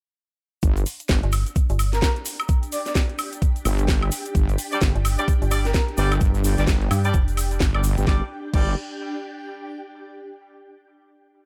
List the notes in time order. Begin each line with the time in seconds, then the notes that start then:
0.63 G1 D4, kick, closed hi-hat, shaker
0.77 closed hi-hat, shaker
0.86 open hi-hat, shaker
1.00 closed hi-hat, shaker
1.08 G1, kick, snare, closed hi-hat, shaker
1.23 G1, closed hi-hat
1.32 open hi-hat, high woodblock, shaker
1.46 closed hi-hat, shaker
1.56 G4, kick, closed hi-hat, shaker
1.69 G1, closed hi-hat, shaker
1.79 open hi-hat, high woodblock, shaker
1.85 G5
1.93 A#4, snare, closed hi-hat, shaker
2.02 A#4, kick, snare, closed hi-hat, shaker
2.16 closed hi-hat
2.25 open hi-hat, shaker
2.40 closed hi-hat, high woodblock, shaker
2.48 kick, closed hi-hat, shaker
2.63 closed hi-hat, shaker
2.72 D5, open hi-hat, shaker
2.86 D5, snare, closed hi-hat, shaker
2.95 kick, snare, closed hi-hat, shaker
3.09 closed hi-hat
3.19 open hi-hat, high woodblock, shaker
3.33 closed hi-hat, shaker
3.42 kick, closed hi-hat, shaker
3.56 closed hi-hat, shaker
3.65 G1, open hi-hat, high woodblock, shaker
3.78 closed hi-hat, shaker
3.88 kick, snare, closed hi-hat, shaker
4.02 closed hi-hat, high woodblock
4.12 open hi-hat, shaker
4.25 closed hi-hat, shaker
4.35 G1, kick, closed hi-hat, shaker
4.49 closed hi-hat, shaker
4.58 open hi-hat, shaker
4.72 G3 D4 D5, closed hi-hat, shaker
4.81 G1, kick, snare, closed hi-hat, shaker
4.95 G1, closed hi-hat
5.05 open hi-hat, high woodblock, shaker
5.18 G3 D4 D5, closed hi-hat, shaker
5.28 kick, closed hi-hat, shaker
5.42 G1, closed hi-hat, shaker
5.51 G3 D4 D5, open hi-hat, high woodblock, shaker
5.65 A#4, snare, closed hi-hat, shaker
5.74 A#4, kick, snare, closed hi-hat, shaker
5.88 closed hi-hat
5.97 G1 G3 D4 D5, open hi-hat, shaker
6.12 closed hi-hat, high woodblock, shaker
6.21 G1, kick, closed hi-hat, shaker
6.35 closed hi-hat, shaker
6.44 open hi-hat, shaker
6.58 G1 G3 D4 D5, snare, closed hi-hat, shaker
6.67 G1, kick, snare, closed hi-hat, shaker
6.82 closed hi-hat
6.91 G2, open hi-hat, high woodblock, shaker
7.04 G3 D4 D5, closed hi-hat, shaker
7.14 F1, kick, closed hi-hat, shaker
7.28 closed hi-hat, shaker
7.37 open hi-hat, high woodblock, shaker
7.51 closed hi-hat, shaker
7.60 G1, kick, snare, closed hi-hat, shaker
7.74 G3 D4 D5, closed hi-hat, high woodblock
7.84 open hi-hat, shaker
7.98 G1, closed hi-hat, shaker
8.07 G1 G3 D4 D5, kick, snare
8.16 G4
8.23 G5
8.54 G1 G3 D4 D5, kick, crash